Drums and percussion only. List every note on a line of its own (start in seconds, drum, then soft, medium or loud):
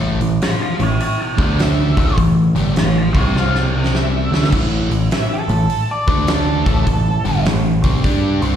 0.21 open hi-hat medium
0.41 snare loud
0.41 open hi-hat medium
0.80 open hi-hat soft
1.00 open hi-hat medium
1.38 kick loud
1.38 open hi-hat soft
1.59 snare loud
1.59 open hi-hat medium
1.97 kick medium
1.97 open hi-hat soft
2.18 kick medium
2.18 open hi-hat medium
2.56 open hi-hat medium
2.76 snare loud
2.76 open hi-hat medium
3.15 kick medium
3.15 open hi-hat soft
3.36 snare medium
3.55 snare medium
3.84 snare medium
3.95 snare medium
4.34 snare medium
4.44 snare medium
4.53 kick medium
4.53 crash loud
4.91 open hi-hat medium
5.11 snare loud
5.11 open hi-hat medium
5.49 open hi-hat medium
5.70 open hi-hat medium
6.08 kick loud
6.08 open hi-hat soft
6.27 snare loud
6.27 open hi-hat medium
6.66 kick loud
6.66 open hi-hat medium
6.87 kick medium
6.87 open hi-hat medium
7.25 open hi-hat medium
7.45 snare loud
7.45 open hi-hat medium
7.84 kick loud
7.84 open hi-hat medium
8.04 kick loud
8.04 open hi-hat medium
8.42 open hi-hat medium